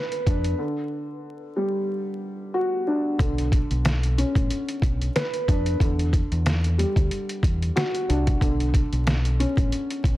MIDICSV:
0, 0, Header, 1, 4, 480
1, 0, Start_track
1, 0, Key_signature, 2, "minor"
1, 0, Tempo, 652174
1, 432, Time_signature, 4, 2, 24, 8
1, 7485, End_track
2, 0, Start_track
2, 0, Title_t, "Upright piano"
2, 0, Program_c, 0, 0
2, 0, Control_c, 0, 64, 127
2, 0, Note_on_c, 0, 50, 90
2, 0, Note_on_c, 0, 61, 79
2, 0, Note_on_c, 0, 71, 100
2, 195, Note_on_c, 0, 62, 87
2, 419, Note_off_c, 0, 50, 0
2, 430, Note_on_c, 0, 50, 84
2, 434, Note_off_c, 0, 61, 0
2, 434, Note_off_c, 0, 62, 0
2, 434, Note_off_c, 0, 71, 0
2, 441, Control_c, 0, 64, 0
2, 548, Control_c, 0, 64, 127
2, 1152, Note_on_c, 0, 55, 86
2, 1870, Note_on_c, 0, 66, 95
2, 2114, Note_on_c, 0, 62, 78
2, 2335, Note_off_c, 0, 50, 0
2, 2346, Note_on_c, 0, 50, 93
2, 2351, Note_off_c, 0, 66, 0
2, 2352, Note_off_c, 0, 55, 0
2, 2353, Note_off_c, 0, 62, 0
2, 2363, Control_c, 0, 64, 0
2, 2483, Control_c, 0, 64, 127
2, 3075, Note_on_c, 0, 61, 81
2, 3796, Note_on_c, 0, 71, 102
2, 4035, Note_on_c, 0, 62, 89
2, 4258, Note_off_c, 0, 50, 0
2, 4269, Note_on_c, 0, 50, 86
2, 4273, Note_off_c, 0, 62, 0
2, 4274, Note_off_c, 0, 61, 0
2, 4274, Note_off_c, 0, 71, 0
2, 4281, Control_c, 0, 64, 0
2, 4425, Control_c, 0, 64, 127
2, 4992, Note_on_c, 0, 55, 88
2, 5710, Note_on_c, 0, 66, 104
2, 5954, Note_on_c, 0, 62, 79
2, 6176, Note_off_c, 0, 50, 0
2, 6187, Note_on_c, 0, 50, 96
2, 6191, Note_off_c, 0, 66, 0
2, 6192, Note_off_c, 0, 55, 0
2, 6193, Note_off_c, 0, 62, 0
2, 6203, Control_c, 0, 64, 0
2, 6353, Control_c, 0, 64, 127
2, 6915, Note_on_c, 0, 61, 84
2, 7485, Note_off_c, 0, 50, 0
2, 7485, Note_off_c, 0, 61, 0
2, 7485, End_track
3, 0, Start_track
3, 0, Title_t, "Fingered electric bass"
3, 0, Program_c, 1, 33
3, 198, Note_on_c, 1, 41, 104
3, 386, Note_off_c, 1, 41, 0
3, 2354, Note_on_c, 1, 35, 102
3, 2649, Note_off_c, 1, 35, 0
3, 2730, Note_on_c, 1, 35, 93
3, 3109, Note_off_c, 1, 35, 0
3, 3207, Note_on_c, 1, 33, 91
3, 3291, Note_off_c, 1, 33, 0
3, 3551, Note_on_c, 1, 35, 101
3, 3742, Note_off_c, 1, 35, 0
3, 4039, Note_on_c, 1, 41, 105
3, 4226, Note_off_c, 1, 41, 0
3, 4274, Note_on_c, 1, 40, 115
3, 4569, Note_off_c, 1, 40, 0
3, 4650, Note_on_c, 1, 40, 94
3, 5028, Note_off_c, 1, 40, 0
3, 5127, Note_on_c, 1, 38, 98
3, 5211, Note_off_c, 1, 38, 0
3, 5471, Note_on_c, 1, 40, 91
3, 5662, Note_off_c, 1, 40, 0
3, 5958, Note_on_c, 1, 36, 92
3, 6146, Note_off_c, 1, 36, 0
3, 6194, Note_on_c, 1, 35, 103
3, 6489, Note_off_c, 1, 35, 0
3, 6570, Note_on_c, 1, 35, 92
3, 6949, Note_off_c, 1, 35, 0
3, 7047, Note_on_c, 1, 33, 90
3, 7131, Note_off_c, 1, 33, 0
3, 7392, Note_on_c, 1, 35, 101
3, 7485, Note_off_c, 1, 35, 0
3, 7485, End_track
4, 0, Start_track
4, 0, Title_t, "Drums"
4, 87, Note_on_c, 9, 42, 59
4, 161, Note_off_c, 9, 42, 0
4, 195, Note_on_c, 9, 36, 91
4, 198, Note_on_c, 9, 42, 71
4, 269, Note_off_c, 9, 36, 0
4, 272, Note_off_c, 9, 42, 0
4, 327, Note_on_c, 9, 42, 62
4, 400, Note_off_c, 9, 42, 0
4, 2350, Note_on_c, 9, 36, 119
4, 2357, Note_on_c, 9, 42, 87
4, 2424, Note_off_c, 9, 36, 0
4, 2431, Note_off_c, 9, 42, 0
4, 2491, Note_on_c, 9, 42, 62
4, 2564, Note_off_c, 9, 42, 0
4, 2591, Note_on_c, 9, 36, 95
4, 2596, Note_on_c, 9, 42, 78
4, 2664, Note_off_c, 9, 36, 0
4, 2669, Note_off_c, 9, 42, 0
4, 2729, Note_on_c, 9, 42, 47
4, 2803, Note_off_c, 9, 42, 0
4, 2834, Note_on_c, 9, 42, 86
4, 2838, Note_on_c, 9, 38, 113
4, 2907, Note_off_c, 9, 42, 0
4, 2911, Note_off_c, 9, 38, 0
4, 2969, Note_on_c, 9, 42, 58
4, 3043, Note_off_c, 9, 42, 0
4, 3079, Note_on_c, 9, 42, 80
4, 3153, Note_off_c, 9, 42, 0
4, 3204, Note_on_c, 9, 36, 99
4, 3210, Note_on_c, 9, 42, 61
4, 3277, Note_off_c, 9, 36, 0
4, 3284, Note_off_c, 9, 42, 0
4, 3315, Note_on_c, 9, 42, 81
4, 3389, Note_off_c, 9, 42, 0
4, 3448, Note_on_c, 9, 42, 60
4, 3521, Note_off_c, 9, 42, 0
4, 3548, Note_on_c, 9, 36, 93
4, 3558, Note_on_c, 9, 42, 89
4, 3622, Note_off_c, 9, 36, 0
4, 3631, Note_off_c, 9, 42, 0
4, 3691, Note_on_c, 9, 42, 53
4, 3765, Note_off_c, 9, 42, 0
4, 3796, Note_on_c, 9, 42, 88
4, 3800, Note_on_c, 9, 38, 118
4, 3870, Note_off_c, 9, 42, 0
4, 3873, Note_off_c, 9, 38, 0
4, 3928, Note_on_c, 9, 42, 60
4, 4001, Note_off_c, 9, 42, 0
4, 4035, Note_on_c, 9, 36, 94
4, 4039, Note_on_c, 9, 42, 73
4, 4109, Note_off_c, 9, 36, 0
4, 4112, Note_off_c, 9, 42, 0
4, 4167, Note_on_c, 9, 42, 63
4, 4240, Note_off_c, 9, 42, 0
4, 4270, Note_on_c, 9, 36, 118
4, 4278, Note_on_c, 9, 42, 87
4, 4344, Note_off_c, 9, 36, 0
4, 4352, Note_off_c, 9, 42, 0
4, 4411, Note_on_c, 9, 42, 61
4, 4485, Note_off_c, 9, 42, 0
4, 4511, Note_on_c, 9, 36, 98
4, 4516, Note_on_c, 9, 42, 79
4, 4585, Note_off_c, 9, 36, 0
4, 4589, Note_off_c, 9, 42, 0
4, 4650, Note_on_c, 9, 42, 49
4, 4723, Note_off_c, 9, 42, 0
4, 4754, Note_on_c, 9, 42, 90
4, 4757, Note_on_c, 9, 38, 113
4, 4827, Note_off_c, 9, 42, 0
4, 4831, Note_off_c, 9, 38, 0
4, 4889, Note_on_c, 9, 42, 56
4, 4962, Note_off_c, 9, 42, 0
4, 5000, Note_on_c, 9, 42, 78
4, 5074, Note_off_c, 9, 42, 0
4, 5124, Note_on_c, 9, 36, 93
4, 5130, Note_on_c, 9, 42, 62
4, 5197, Note_off_c, 9, 36, 0
4, 5203, Note_off_c, 9, 42, 0
4, 5235, Note_on_c, 9, 42, 82
4, 5309, Note_off_c, 9, 42, 0
4, 5368, Note_on_c, 9, 42, 59
4, 5442, Note_off_c, 9, 42, 0
4, 5468, Note_on_c, 9, 36, 94
4, 5478, Note_on_c, 9, 42, 86
4, 5542, Note_off_c, 9, 36, 0
4, 5551, Note_off_c, 9, 42, 0
4, 5612, Note_on_c, 9, 42, 54
4, 5685, Note_off_c, 9, 42, 0
4, 5716, Note_on_c, 9, 42, 87
4, 5720, Note_on_c, 9, 38, 121
4, 5790, Note_off_c, 9, 42, 0
4, 5793, Note_off_c, 9, 38, 0
4, 5848, Note_on_c, 9, 42, 59
4, 5921, Note_off_c, 9, 42, 0
4, 5959, Note_on_c, 9, 42, 74
4, 6033, Note_off_c, 9, 42, 0
4, 6087, Note_on_c, 9, 42, 64
4, 6088, Note_on_c, 9, 36, 92
4, 6160, Note_off_c, 9, 42, 0
4, 6162, Note_off_c, 9, 36, 0
4, 6191, Note_on_c, 9, 36, 121
4, 6198, Note_on_c, 9, 42, 85
4, 6264, Note_off_c, 9, 36, 0
4, 6272, Note_off_c, 9, 42, 0
4, 6332, Note_on_c, 9, 42, 60
4, 6405, Note_off_c, 9, 42, 0
4, 6431, Note_on_c, 9, 36, 95
4, 6437, Note_on_c, 9, 42, 83
4, 6505, Note_off_c, 9, 36, 0
4, 6510, Note_off_c, 9, 42, 0
4, 6570, Note_on_c, 9, 42, 49
4, 6644, Note_off_c, 9, 42, 0
4, 6675, Note_on_c, 9, 42, 89
4, 6679, Note_on_c, 9, 38, 118
4, 6748, Note_off_c, 9, 42, 0
4, 6752, Note_off_c, 9, 38, 0
4, 6809, Note_on_c, 9, 42, 58
4, 6883, Note_off_c, 9, 42, 0
4, 6921, Note_on_c, 9, 42, 82
4, 6994, Note_off_c, 9, 42, 0
4, 7045, Note_on_c, 9, 36, 96
4, 7051, Note_on_c, 9, 42, 62
4, 7118, Note_off_c, 9, 36, 0
4, 7124, Note_off_c, 9, 42, 0
4, 7156, Note_on_c, 9, 42, 81
4, 7230, Note_off_c, 9, 42, 0
4, 7289, Note_on_c, 9, 42, 59
4, 7363, Note_off_c, 9, 42, 0
4, 7389, Note_on_c, 9, 36, 89
4, 7399, Note_on_c, 9, 42, 84
4, 7462, Note_off_c, 9, 36, 0
4, 7472, Note_off_c, 9, 42, 0
4, 7485, End_track
0, 0, End_of_file